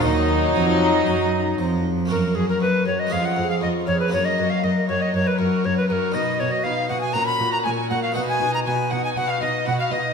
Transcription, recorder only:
0.02 1.84 D#4 medium
2.11 2.37 A#4 medium
2.35 2.48 G#4 medium
2.49 2.61 A#4 medium
2.62 2.86 B4 medium
2.87 3.01 C#5 medium
2.99 3.14 D#5 medium
3.12 3.27 F5 medium
3.25 3.50 F#5 medium
3.50 3.56 F5 medium
3.62 3.68 D#5 medium
3.87 3.99 C#5 medium
4.00 4.12 B4 medium
4.13 4.26 C#5 medium
4.25 4.52 D#5 medium
4.50 4.66 F5 medium
4.64 4.88 D#5 medium
4.89 5.04 C#5 medium
5.02 5.14 D#5 medium
5.15 5.29 C#5 medium
5.27 5.39 B4 medium
5.39 5.67 A#4 medium
5.65 5.77 C#5 medium
5.77 5.88 B4 medium
5.89 6.16 A#4 medium
5.89 5.93 B4 medium
6.14 6.41 D#5 medium
6.40 6.53 C#5 medium
6.51 6.65 D#5 medium
6.64 6.88 F5 medium
6.89 7.00 F#5 medium
7.01 7.15 G#5 medium
7.13 7.25 A#5 medium
7.26 7.52 B5 medium
7.52 7.58 A#5 medium
7.64 7.70 G#5 medium
7.90 8.02 F#5 medium
8.03 8.15 F5 medium
8.16 8.21 F#5 medium
8.29 8.54 G#5 medium
8.54 8.60 A#5 medium
8.66 8.94 G#5 medium
8.92 9.04 F#5 medium
9.05 9.10 G#5 medium
9.17 9.32 F#5 medium
9.30 9.41 F5 medium
9.42 9.66 D#5 medium
9.67 9.73 F#5 medium
9.79 9.85 F5 medium
9.93 10.13 D#5 medium

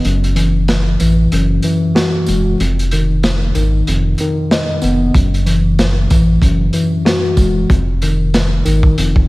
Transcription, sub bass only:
0.05 0.96 F#1 loud
1.00 1.27 A1 medium
1.32 1.59 F#1 loud
2.28 2.54 E1 medium
2.60 3.51 F1 loud
3.55 3.82 G#1 loud
3.87 4.14 F1 medium
4.83 5.10 F1 medium
5.15 6.06 F#1 loud
6.11 6.37 A1 medium
6.42 6.69 F#1 loud
7.37 7.64 E1 medium
7.70 8.62 F1 loud
8.66 8.92 G#1 loud
8.98 9.24 F1 medium

